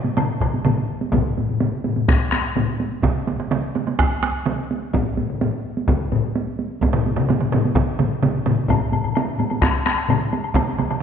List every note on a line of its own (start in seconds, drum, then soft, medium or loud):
0.04 taiko high medium
0.17 taiko low-mid loud
0.17 taiko mid loud
0.17 taiko high medium
0.17 high woodblock medium
0.40 taiko medium
0.40 taiko low-mid medium
0.40 taiko mid medium
0.40 high woodblock soft
0.54 taiko high soft
0.65 taiko low-mid loud
0.65 taiko mid loud
0.65 taiko high medium
0.65 high woodblock soft
0.78 taiko high soft
1.01 taiko high medium
1.12 taiko loud
1.12 taiko low-mid loud
1.12 taiko high medium
1.38 taiko low-mid medium
1.38 taiko high medium
1.49 taiko low-mid medium
1.49 taiko high soft
1.60 taiko low-mid medium
1.60 taiko high medium
1.72 taiko high soft
1.84 taiko low-mid medium
1.84 taiko high medium
1.96 taiko low-mid medium
1.96 taiko high medium
2.08 taiko rim medium
2.08 taiko loud
2.08 taiko high medium
2.21 taiko high soft
2.32 taiko rim medium
2.32 taiko high medium
2.44 taiko high soft
2.56 taiko low-mid loud
2.56 taiko high medium
2.69 taiko high soft
2.80 taiko high medium
2.92 taiko high soft
3.03 taiko loud
3.03 taiko mid loud
3.03 taiko high medium
3.15 taiko high soft
3.27 taiko mid medium
3.27 taiko high medium
3.39 taiko mid medium
3.39 taiko high soft
3.51 taiko mid loud
3.51 taiko high medium
3.64 taiko high soft
3.75 taiko mid medium
3.75 taiko high medium
3.87 taiko mid medium
3.87 taiko high medium
3.99 taiko rim medium
3.99 taiko loud
3.99 taiko high medium
4.11 taiko high soft
4.23 taiko rim medium
4.23 taiko high medium
4.35 taiko high soft
4.46 taiko mid loud
4.46 taiko high medium
4.59 taiko high soft
4.71 taiko high medium
4.82 taiko high soft
4.93 taiko loud
4.93 taiko low-mid medium
4.93 taiko high medium
5.06 taiko high soft
5.17 taiko low-mid medium
5.17 taiko high medium
5.30 taiko low-mid medium
5.41 taiko low-mid medium
5.41 taiko high medium
5.53 taiko high soft
5.77 taiko high medium
5.88 taiko loud
5.88 taiko low-mid loud
5.88 taiko high medium
6.00 taiko high soft
6.12 taiko low-mid loud
6.12 taiko high medium
6.24 taiko high soft
6.36 taiko high medium
6.47 taiko high soft
6.59 taiko high medium
6.71 taiko high soft
6.82 taiko loud
6.82 taiko high medium
6.93 taiko low-mid loud
6.93 taiko mid loud
6.93 taiko high soft
7.06 taiko high medium
7.17 taiko low-mid loud
7.17 taiko mid loud
7.17 taiko high soft
7.29 taiko low-mid medium
7.29 taiko mid medium
7.29 taiko high medium
7.41 taiko low-mid medium
7.41 taiko mid medium
7.41 taiko high soft
7.52 taiko low-mid loud
7.52 taiko mid loud
7.52 taiko high medium
7.65 taiko high medium
7.76 taiko loud
7.76 taiko low-mid loud
7.76 taiko mid loud
7.76 taiko high medium
7.89 taiko high soft
7.99 taiko low-mid loud
7.99 taiko mid loud
7.99 taiko high medium
8.11 taiko high soft
8.22 taiko low-mid loud
8.22 taiko mid loud
8.22 taiko high medium
8.36 taiko high soft
8.46 taiko low-mid loud
8.46 taiko mid loud
8.46 taiko high medium
8.58 taiko high soft
8.68 taiko medium
8.68 taiko low-mid medium
8.68 taiko high medium
8.68 high woodblock medium
8.81 taiko high soft
8.92 taiko low-mid medium
8.92 taiko high medium
8.92 high woodblock medium
9.04 taiko low-mid medium
9.04 taiko high soft
9.04 high woodblock soft
9.15 taiko low-mid medium
9.15 taiko high medium
9.15 high woodblock medium
9.29 taiko high soft
9.39 taiko low-mid medium
9.39 taiko high medium
9.39 high woodblock soft
9.50 taiko low-mid medium
9.50 taiko high medium
9.50 high woodblock medium
9.62 taiko rim medium
9.62 taiko loud
9.62 taiko high medium
9.62 high woodblock medium
9.76 taiko high soft
9.86 taiko rim medium
9.86 taiko high medium
9.86 high woodblock soft
9.98 taiko high soft
9.98 high woodblock medium
10.09 taiko low-mid loud
10.09 taiko high medium
10.09 high woodblock medium
10.22 taiko high soft
10.33 taiko high medium
10.33 high woodblock soft
10.44 taiko high soft
10.44 high woodblock soft
10.55 taiko loud
10.55 taiko mid loud
10.55 taiko high medium
10.55 high woodblock medium
10.67 taiko high soft
10.79 taiko mid medium
10.79 taiko high medium
10.79 high woodblock soft
10.90 taiko mid medium
10.90 taiko high soft
10.90 high woodblock soft